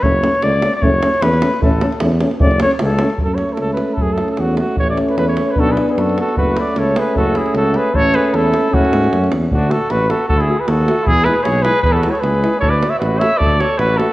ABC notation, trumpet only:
X:1
M:2/4
L:1/16
Q:"Swing 16ths" 1/4=152
K:F#m
V:1 name="Trumpet"
z8 | z8 | z8 | z8 |
A c2 A A B2 A | G A2 A F2 F2 | c d2 B B c2 B | A B2 B A2 A2 |
B2 d2 c2 B2 | A2 G2 A2 B2 | c2 B2 A4 | F6 z2 |
F2 A2 B2 A2 | A G2 B A4 | G2 B2 c2 B2 | B A2 c B4 |
c d2 e B2 e2 | d2 c2 B2 A2 |]